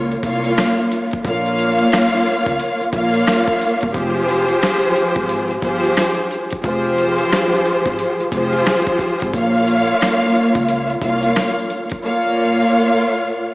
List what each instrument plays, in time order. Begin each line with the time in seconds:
Already playing: upright bass C#2, string section A#2 A#3 F4 C#5 F5
0.12 closed hi-hat
0.23 upright bass C2, string section A#2 A#3 F4 C#5 F5, kick, closed hi-hat
0.44 closed hi-hat
0.57 cross-stick, snare, closed hi-hat
0.92 closed hi-hat
1.11 kick, closed hi-hat
1.24 upright bass A#1, string section A#2 A#3 F4 C#5 F5, kick, closed hi-hat
1.46 closed hi-hat
1.59 closed hi-hat
1.79 closed hi-hat
1.92 cross-stick, snare, closed hi-hat
2.13 snare, closed hi-hat
2.26 closed hi-hat
2.46 upright bass C#2, kick, closed hi-hat
2.60 closed hi-hat
2.81 muted upright bass stroke, closed hi-hat
2.92 upright bass A#1, string section A#2 A#3 F4 C#5 F5, kick, closed hi-hat
3.14 closed hi-hat
3.27 cross-stick, snare, closed hi-hat
3.48 kick, closed hi-hat
3.61 closed hi-hat
3.81 upright bass G1, kick, closed hi-hat
3.92 upright bass F1, string section F3 F4 G4 G#4 C5, kick, closed hi-hat
4.29 closed hi-hat
4.48 closed hi-hat
4.62 cross-stick, snare, closed hi-hat
4.82 closed hi-hat
4.96 closed hi-hat
5.16 upright bass G#1, kick, closed hi-hat
5.29 closed hi-hat
5.51 closed hi-hat
5.61 upright bass G1, string section F3 F4 G4 G#4 C5, kick, closed hi-hat
5.84 closed hi-hat
5.97 cross-stick, snare, closed hi-hat
6.31 closed hi-hat
6.51 kick, closed hi-hat
6.63 upright bass F1, string section F3 F4 G4 G#4 C5, kick, closed hi-hat
6.98 closed hi-hat
7.18 closed hi-hat
7.32 cross-stick, snare, closed hi-hat
7.52 snare, closed hi-hat
7.66 closed hi-hat
7.86 upright bass G#1, kick, closed hi-hat
7.99 closed hi-hat
8.20 muted upright bass stroke, closed hi-hat
8.32 upright bass F1, string section F3 F4 G4 G#4 C5, kick, closed hi-hat
8.53 closed hi-hat
8.66 cross-stick, snare, closed hi-hat
8.87 kick
8.99 kick, closed hi-hat
9.20 upright bass G#1, kick, closed hi-hat
9.32 upright bass A#1, string section A#2 A#3 F4 C#5 F5, kick, closed hi-hat
9.68 closed hi-hat
9.88 closed hi-hat
10.01 cross-stick, snare, closed hi-hat
10.22 closed hi-hat
10.35 closed hi-hat
10.55 upright bass C#2, kick, closed hi-hat
10.68 closed hi-hat
10.90 closed hi-hat
11.01 upright bass C2, string section A#2 A#3 F4 C#5 F5, kick, closed hi-hat
11.23 closed hi-hat
11.36 cross-stick, snare, closed hi-hat
11.70 closed hi-hat
11.90 kick, closed hi-hat
12.02 string section A#2 A#3 F4 C#5 F5